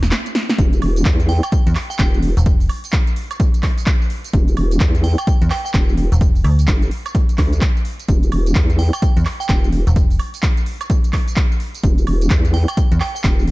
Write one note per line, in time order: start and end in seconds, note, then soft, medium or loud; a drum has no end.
0.00 0.12 E1 loud
0.00 snare medium
0.00 closed hi-hat soft
0.00 tambourine medium
0.11 snare medium
0.11 clap loud
0.11 closed hi-hat medium
0.11 tambourine medium
0.26 closed hi-hat soft
0.26 tambourine soft
0.35 snare loud
0.35 open hi-hat loud
0.50 snare medium
0.50 closed hi-hat soft
0.50 tambourine medium
0.59 0.81 E1 loud
0.59 kick loud
0.59 closed hi-hat medium
0.59 tambourine medium
0.73 closed hi-hat soft
0.73 tambourine soft
0.82 1.04 E1 loud
0.82 open hi-hat loud
0.82 high woodblock medium
0.96 closed hi-hat soft
0.96 tambourine medium
1.05 1.41 E2 medium
1.05 kick loud
1.05 clap loud
1.05 closed hi-hat medium
1.05 tambourine medium
1.20 closed hi-hat soft
1.20 tambourine soft
1.29 1.38 G5 medium
1.29 open hi-hat loud
1.43 1.49 G5 medium
1.43 closed hi-hat medium
1.43 tambourine medium
1.43 high woodblock medium
1.52 kick loud
1.52 closed hi-hat medium
1.52 tambourine medium
1.67 1.74 E2 loud
1.67 closed hi-hat medium
1.67 tambourine soft
1.75 clap medium
1.75 open hi-hat loud
1.75 high woodblock medium
1.90 1.96 G5 medium
1.90 tambourine medium
1.99 2.35 E1 loud
1.99 2.08 G5 medium
1.99 kick loud
1.99 clap loud
1.99 closed hi-hat medium
1.99 tambourine medium
2.14 tambourine soft
2.23 open hi-hat loud
2.37 2.68 E1 loud
2.37 closed hi-hat soft
2.37 tambourine medium
2.46 kick loud
2.46 closed hi-hat medium
2.46 tambourine medium
2.60 open hi-hat medium
2.60 tambourine soft
2.69 open hi-hat loud
2.69 high woodblock medium
2.84 closed hi-hat soft
2.84 tambourine medium
2.93 kick loud
2.93 clap loud
2.93 closed hi-hat medium
2.93 tambourine medium
3.07 closed hi-hat soft
3.07 tambourine soft
3.16 open hi-hat loud
3.31 closed hi-hat medium
3.31 tambourine medium
3.31 high woodblock medium
3.40 kick loud
3.40 closed hi-hat medium
3.40 tambourine medium
3.54 closed hi-hat medium
3.54 tambourine soft
3.63 kick medium
3.63 clap medium
3.63 open hi-hat loud
3.63 high woodblock medium
3.78 closed hi-hat soft
3.78 tambourine medium
3.86 kick loud
3.86 clap loud
3.86 closed hi-hat medium
3.86 tambourine medium
4.02 tambourine soft
4.10 open hi-hat loud
4.24 closed hi-hat soft
4.24 tambourine medium
4.33 4.56 E1 loud
4.33 kick loud
4.33 closed hi-hat medium
4.33 tambourine medium
4.48 closed hi-hat soft
4.48 tambourine soft
4.57 4.79 E1 loud
4.57 open hi-hat loud
4.57 high woodblock medium
4.71 closed hi-hat soft
4.71 tambourine medium
4.80 5.16 E2 medium
4.80 kick loud
4.80 clap loud
4.80 closed hi-hat medium
4.80 tambourine medium
4.95 closed hi-hat soft
4.95 tambourine soft
5.04 5.13 G5 medium
5.04 open hi-hat loud
5.18 5.24 G5 medium
5.18 closed hi-hat medium
5.18 tambourine medium
5.18 high woodblock medium
5.27 kick loud
5.27 closed hi-hat medium
5.27 tambourine medium
5.42 5.49 E2 loud
5.42 closed hi-hat medium
5.42 tambourine soft
5.50 5.60 G5 medium
5.50 clap medium
5.50 open hi-hat loud
5.50 high woodblock medium
5.65 5.71 G5 medium
5.65 tambourine medium
5.74 6.10 E1 loud
5.74 kick loud
5.74 clap loud
5.74 closed hi-hat medium
5.74 tambourine medium
5.89 tambourine soft
5.98 open hi-hat loud
6.12 6.43 E1 loud
6.12 closed hi-hat soft
6.12 tambourine medium
6.21 kick loud
6.21 closed hi-hat medium
6.21 tambourine medium
6.35 open hi-hat medium
6.35 tambourine soft
6.44 6.66 D2 loud
6.44 open hi-hat loud
6.44 high woodblock medium
6.59 closed hi-hat soft
6.59 tambourine medium
6.68 6.90 G1 medium
6.68 kick loud
6.68 clap loud
6.68 closed hi-hat medium
6.68 tambourine medium
6.82 closed hi-hat soft
6.82 tambourine soft
6.91 open hi-hat loud
7.06 closed hi-hat medium
7.06 tambourine medium
7.06 high woodblock medium
7.15 kick loud
7.15 closed hi-hat medium
7.15 tambourine medium
7.29 closed hi-hat medium
7.29 tambourine soft
7.38 7.60 D2 loud
7.38 kick medium
7.38 clap medium
7.38 open hi-hat loud
7.38 high woodblock medium
7.53 closed hi-hat soft
7.53 tambourine medium
7.61 kick loud
7.61 clap loud
7.61 closed hi-hat medium
7.61 tambourine medium
7.77 tambourine soft
7.85 open hi-hat loud
8.00 closed hi-hat soft
8.00 tambourine medium
8.09 8.31 E1 loud
8.09 kick loud
8.09 closed hi-hat medium
8.09 tambourine medium
8.23 closed hi-hat soft
8.23 tambourine soft
8.32 8.54 E1 loud
8.32 open hi-hat loud
8.32 high woodblock medium
8.46 closed hi-hat soft
8.46 tambourine medium
8.55 8.91 E2 loud
8.55 kick loud
8.55 clap loud
8.55 closed hi-hat medium
8.55 tambourine medium
8.70 closed hi-hat soft
8.70 tambourine soft
8.79 8.88 G5 medium
8.79 open hi-hat loud
8.93 8.99 G5 medium
8.93 closed hi-hat soft
8.93 tambourine medium
8.93 high woodblock medium
9.02 kick loud
9.02 closed hi-hat medium
9.02 tambourine medium
9.17 9.24 E2 loud
9.17 closed hi-hat medium
9.17 tambourine soft
9.25 clap medium
9.25 open hi-hat loud
9.25 high woodblock medium
9.40 9.46 G5 medium
9.40 tambourine medium
9.49 9.85 E1 loud
9.49 9.58 G5 medium
9.49 kick loud
9.49 clap loud
9.49 closed hi-hat medium
9.64 tambourine soft
9.73 open hi-hat loud
9.87 10.18 E1 loud
9.87 closed hi-hat soft
9.87 tambourine medium
9.96 kick loud
9.96 closed hi-hat medium
9.96 tambourine medium
10.11 open hi-hat medium
10.11 tambourine soft
10.19 open hi-hat loud
10.19 high woodblock medium
10.34 closed hi-hat soft
10.34 tambourine medium
10.43 kick loud
10.43 clap loud
10.43 closed hi-hat medium
10.43 tambourine medium
10.57 closed hi-hat soft
10.57 tambourine soft
10.66 open hi-hat loud
10.81 closed hi-hat medium
10.81 tambourine medium
10.81 high woodblock medium
10.90 kick loud
10.90 closed hi-hat medium
10.90 tambourine medium
11.04 closed hi-hat medium
11.04 tambourine soft
11.13 kick medium
11.13 clap medium
11.13 open hi-hat loud
11.13 high woodblock medium
11.28 closed hi-hat soft
11.28 tambourine medium
11.36 kick loud
11.36 clap loud
11.36 closed hi-hat medium
11.36 tambourine medium
11.52 tambourine soft
11.60 open hi-hat loud
11.75 closed hi-hat soft
11.75 tambourine medium
11.84 12.06 E1 loud
11.84 kick loud
11.84 closed hi-hat medium
11.84 tambourine medium
11.98 closed hi-hat soft
11.98 tambourine soft
12.07 12.29 E1 loud
12.07 open hi-hat loud
12.07 high woodblock medium
12.21 closed hi-hat soft
12.21 tambourine medium
12.30 12.66 E2 loud
12.30 kick loud
12.30 clap loud
12.30 closed hi-hat medium
12.30 tambourine medium
12.45 closed hi-hat soft
12.45 tambourine soft
12.54 12.63 G5 medium
12.54 open hi-hat loud
12.68 12.74 G5 medium
12.68 closed hi-hat medium
12.68 tambourine medium
12.68 high woodblock medium
12.77 kick loud
12.77 closed hi-hat medium
12.77 tambourine medium
12.92 12.99 E2 loud
12.92 closed hi-hat medium
12.92 tambourine soft
13.00 13.10 G5 medium
13.00 clap medium
13.00 open hi-hat loud
13.00 high woodblock medium
13.15 13.21 G5 medium
13.15 tambourine medium
13.24 13.51 E1 loud
13.24 kick loud
13.24 clap loud
13.24 closed hi-hat medium
13.24 tambourine medium
13.39 tambourine soft
13.48 open hi-hat loud